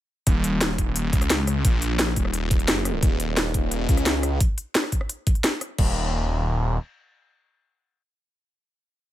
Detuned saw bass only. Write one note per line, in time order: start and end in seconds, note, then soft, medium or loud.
0.27 1.12 D#1 loud
1.13 1.63 C#2 loud
1.65 2.15 A#1 medium
2.16 2.67 D#1 medium
2.68 3.01 F#1 medium
3.03 3.87 D#1 loud
3.89 4.39 C#2 medium
5.78 6.78 D#1 loud